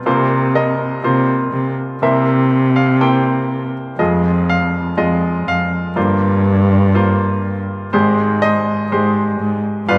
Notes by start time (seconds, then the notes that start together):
0.05 C2 C3 A#3 F4 C5
0.55 A#4 D#5
1.03 C3 A#3 F4 C5
1.53 C3
2.02 C2 C3 A#3 E4 A#4 C5 E5
2.76 F5
3.01 A#3 E4 C5 G5
3.99 F1 F2 G#3 F4 G#4 D#5
4.50 F5
4.97 F2 G#3 F4 D#5
5.47 F2 F5
5.96 G1 G2 A#3 F4 C5
6.95 A#3 F4 C5
7.93 G#1 G#2 G#3 G4 C5
8.42 C5 D#5
8.91 G#2 G#3 G4 C5
9.40 G#2
9.88 G1 G2 G3 F4 B4 F5